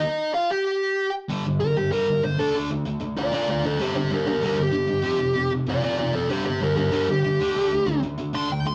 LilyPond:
<<
  \new Staff \with { instrumentName = "Lead electric guitar" } { \time 4/4 \key g \minor \tempo 4 = 191 <ees' ees''>4 <f' f''>8 <g' g''>2 r8 | r4 bes'8 g'8 bes'4 c''8 a'8 | r2 <f' d''>8 <f' d''>8 <f' d''>8 <a' c''>8 | <g' c''>8 <g' c''>8 <g' bes'>8 <g' bes'>8 <g' bes'>8 g'4.~ |
g'4. r8 <f' d''>8 <f' d''>8 <f' d''>8 <a' c''>8 | <g' c''>8 <g' c''>8 <g' bes'>8 <g' bes'>8 <g' bes'>8 g'4.~ | g'4. r4 c'''8 g''8 c'''8 | }
  \new Staff \with { instrumentName = "Distorted electric guitar" } { \clef bass \time 4/4 \key g \minor r1 | <g, d g>8 <g, d>8 <g, d>8 <g, d>8 <g, d g>8 <g, d>8 <g, d>8 <d a d'>8 | <d a d'>8 <d a>8 <d a>8 <d a>8 <d a>8 <d a d'>8 <d a>8 <d a>8 | <g, d g>8 <g, d>8 <g, d>8 <g, d>8 <g, d g>8 <g, d>8 <g, d>8 <g, d>8 |
<f, c f>8 <f, c>8 <f, c>8 <f, c>8 <f, c>8 <f, c f>8 <f, c>8 <f, c>8 | <g, d g>8 <g, d>8 <g, d>8 <g, d>8 <g, d g>8 <g, d>8 <g, d>8 <d a d'>8 | <d a d'>8 <d a>8 <d a>8 <d a>8 <d a>8 <d a d'>8 <d a>8 <d a>8 | }
>>